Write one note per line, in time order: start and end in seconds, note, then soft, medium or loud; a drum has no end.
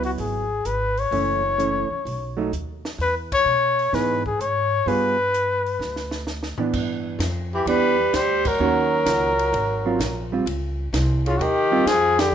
0.00 0.14 C#2 medium
0.00 0.44 F#3 medium
0.00 0.45 B3 medium
0.00 0.45 E4 medium
0.00 open hi-hat soft
0.05 0.12 F#4 medium
0.18 0.62 G#1 medium
0.18 0.68 G#4 medium
0.18 open hi-hat soft
0.65 1.09 G#1 medium
0.65 1.01 B4 medium
0.65 closed hi-hat medium
0.98 2.39 C#5 medium
0.98 open hi-hat soft
1.11 1.87 F#1 medium
1.11 1.41 E3 soft
1.11 1.41 A3 medium
1.11 1.42 C#4 medium
1.11 open hi-hat soft
1.58 1.87 E3 medium
1.58 1.88 A3 medium
1.58 1.88 C#4 medium
1.58 closed hi-hat soft
1.90 muted upright bass stroke soft
2.05 2.49 B1 medium
2.05 open hi-hat soft
2.37 2.51 F#3 medium
2.37 2.51 A3 medium
2.37 2.51 D#4 medium
2.52 2.96 D#2 medium
2.52 closed hi-hat soft
2.85 snare medium
2.85 open hi-hat soft
2.98 3.43 E2 medium
2.98 3.15 B4 medium
2.98 open hi-hat soft
3.32 3.96 C#5 loud
3.32 kick medium
3.32 ride medium
3.45 3.89 B2 medium
3.79 open hi-hat soft
3.93 4.36 G#2 medium
3.93 4.22 E3 soft
3.93 4.22 B3 medium
3.93 4.22 D#4 medium
3.93 4.22 G#4 medium
3.93 4.26 B4 medium
3.93 snare soft
3.93 open hi-hat soft
4.26 4.42 G#4 medium
4.26 kick soft
4.39 4.83 G#2 medium
4.39 4.90 C#5 medium
4.39 closed hi-hat soft
4.86 5.76 G2 medium
4.86 5.16 G3 medium
4.86 5.16 B3 medium
4.86 5.16 F4 medium
4.86 5.16 G#4 medium
4.86 6.28 B4 medium
4.86 open hi-hat soft
5.34 closed hi-hat medium
5.66 open hi-hat soft
5.79 6.54 D2 medium
5.79 snare soft
5.96 snare soft
6.11 snare medium
6.27 snare medium
6.43 snare medium
6.58 7.17 E3 medium
6.58 7.17 B3 medium
6.58 7.18 D4 medium
6.58 muted upright bass stroke soft
6.58 floor tom medium
6.73 7.18 G2 medium
6.73 kick medium
6.73 crash medium
7.19 7.65 F2 medium
7.19 snare medium
7.19 hi-hat pedal medium
7.19 ride medium
7.54 7.67 E3 medium
7.54 7.67 G4 medium
7.66 8.12 E2 medium
7.66 7.95 E3 medium
7.66 8.15 G3 medium
7.66 7.96 B3 medium
7.66 7.96 D4 medium
7.66 8.17 B4 loud
7.66 ride medium
8.13 8.58 D2 medium
8.13 8.49 G3 medium
8.13 8.49 C5 loud
8.13 snare medium
8.13 hi-hat pedal medium
8.13 ride medium
8.45 10.33 F#3 medium
8.45 10.33 A#4 medium
8.45 kick medium
8.45 crash medium
8.59 9.05 D#2 medium
8.59 9.32 D#3 medium
8.59 9.32 A#3 medium
8.59 9.33 C#4 medium
8.59 9.33 F#4 medium
9.06 9.52 C#2 medium
9.06 snare medium
9.06 hi-hat pedal medium
9.06 ride medium
9.39 ride soft
9.53 9.98 G#1 medium
9.53 ride medium
9.85 9.99 F#3 medium
9.85 9.99 C4 medium
9.85 9.99 F4 medium
9.99 10.45 A#1 medium
9.99 snare medium
9.99 hi-hat pedal medium
9.99 ride medium
10.32 10.45 G3 medium
10.32 10.46 C4 medium
10.32 10.46 F4 medium
10.46 10.92 C#2 medium
10.46 ride medium
10.93 11.38 C2 medium
10.93 snare medium
10.93 hi-hat pedal medium
10.93 ride medium
11.26 11.37 C#3 medium
11.26 11.39 F4 medium
11.26 ride soft
11.37 11.85 D#2 medium
11.37 11.42 C#3 medium
11.37 11.88 D#3 medium
11.37 11.42 F#4 medium
11.37 11.89 G4 loud
11.37 ride medium
11.72 11.85 G3 medium
11.72 11.85 C4 medium
11.72 11.85 F4 medium
11.85 12.31 F2 medium
11.85 12.21 F3 medium
11.85 12.21 G#4 loud
11.85 snare medium
11.85 hi-hat pedal medium
11.85 ride medium
12.19 12.35 D3 medium
12.19 12.35 G4 medium
12.19 snare medium
12.19 ride medium